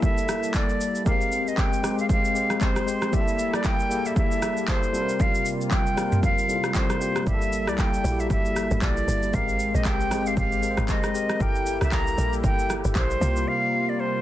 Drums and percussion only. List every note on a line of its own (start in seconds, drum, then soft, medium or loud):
0.03 kick loud
0.03 shaker medium
0.18 shaker medium
0.29 cross-stick medium
0.29 shaker loud
0.43 shaker medium
0.54 kick loud
0.54 clap loud
0.54 shaker medium
0.69 shaker medium
0.81 shaker loud
0.95 shaker soft
1.06 kick loud
1.06 shaker medium
1.21 shaker medium
1.32 shaker loud
1.48 shaker medium
1.57 kick medium
1.57 clap medium
1.57 shaker medium
1.73 shaker medium
1.84 cross-stick medium
1.84 shaker medium
1.99 shaker medium
2.09 kick loud
2.09 shaker medium
2.25 shaker medium
2.36 shaker medium
2.50 cross-stick medium
2.50 shaker medium
2.61 kick medium
2.61 clap medium
2.61 shaker medium
2.76 cross-stick medium
2.76 shaker medium
2.88 shaker loud
3.02 cross-stick medium
3.02 shaker medium
3.13 kick loud
3.13 shaker medium
3.28 shaker medium
3.39 shaker medium
3.54 cross-stick loud
3.54 shaker medium
3.64 kick loud
3.64 clap medium
3.64 shaker medium
3.80 shaker medium
3.91 shaker medium
4.05 shaker medium
4.16 kick loud
4.16 shaker medium
4.31 shaker medium
4.42 cross-stick medium
4.42 shaker loud
4.57 shaker medium
4.68 kick loud
4.68 clap medium
4.68 shaker medium
4.83 shaker medium
4.94 shaker loud
5.09 shaker medium
5.20 kick loud
5.20 shaker medium
5.35 shaker medium
5.46 shaker loud
5.61 shaker medium
5.71 kick loud
5.71 clap medium
5.71 shaker medium
5.87 shaker medium
5.98 cross-stick loud
5.98 shaker medium
6.12 mid tom medium
6.12 shaker medium
6.23 kick loud
6.23 shaker medium
6.38 shaker medium
6.49 shaker loud
6.64 cross-stick medium
6.64 shaker medium
6.75 kick medium
6.75 clap medium
6.75 shaker medium
6.90 cross-stick medium
6.90 shaker medium
7.01 shaker loud
7.16 cross-stick medium
7.16 shaker soft
7.27 kick loud
7.27 shaker medium
7.42 shaker medium
7.53 shaker medium
7.67 cross-stick medium
7.67 shaker medium
7.78 kick loud
7.78 clap medium
7.78 shaker medium
7.94 shaker medium
8.05 shaker medium
8.19 shaker medium
8.30 kick loud
8.30 shaker medium
8.45 shaker medium
8.56 cross-stick medium
8.56 shaker medium
8.71 shaker medium
8.82 kick medium
8.82 clap loud
8.82 shaker medium
8.97 shaker medium
9.08 shaker loud
9.23 shaker medium
9.34 kick loud
9.34 shaker medium
9.48 shaker medium
9.59 shaker medium
9.75 shaker medium
9.85 kick loud
9.85 clap medium
9.85 shaker medium
10.00 shaker medium
10.11 cross-stick loud
10.11 shaker medium
10.26 shaker medium
10.37 kick loud
10.37 shaker medium
10.52 shaker medium
10.63 shaker medium
10.77 cross-stick medium
10.77 shaker medium
10.88 kick medium
10.88 clap loud
10.88 shaker medium
11.04 cross-stick loud
11.04 shaker medium
11.15 shaker loud
11.29 cross-stick medium
11.29 shaker medium
11.40 kick loud
11.40 shaker medium
11.55 shaker medium
11.66 shaker loud
11.81 cross-stick medium
11.81 shaker medium
11.92 kick medium
11.92 clap medium
11.92 shaker medium
12.07 shaker medium
12.18 shaker medium
12.33 shaker medium
12.44 kick loud
12.44 shaker medium
12.59 shaker medium
12.70 cross-stick medium
12.70 shaker loud
12.84 shaker medium
12.95 kick medium
12.95 clap medium
12.95 shaker medium
13.10 shaker medium
13.22 shaker loud
13.36 shaker soft